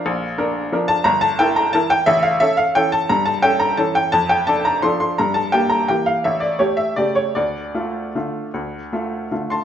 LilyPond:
\new Staff \with { instrumentName = "Upright piano" } { \time 3/4 \key d \minor \tempo 4 = 172 << { f''2~ f''8 a''8 | bes''8 a''8 g''8 bes''8 a''8 g''8 | e''8 f''8 e''8 f''8 g''8 a''8 | bes''8 a''8 g''8 bes''8 a''8 g''8 |
a''8 g''8 a''8 bes''8 c'''8 c'''8 | bes''8 a''8 g''8 bes''8 g''8 f''8 | e''8 d''8 cis''8 e''8 d''8 cis''8 | d''2.~ |
d''2~ d''8 <a'' c'''>8 | } \\ { bes,,4 <d' bes'>4 <f d' bes'>4 | g,,4 <e' bes'>4 <e e' bes'>4 | a,,4 <cis' a'>4 <e cis' a'>4 | g,4 <cis' a'>4 <e cis' a'>4 |
f,4 <d' a'>4 <f d' a'>4 | g,4 <bes g'>4 <e bes g'>4 | a,,4 <a g'>4 <cis a g'>4 | d,4 <a f'>4 <d a f'>4 |
d,4 <a f'>4 <d a f'>4 | } >> }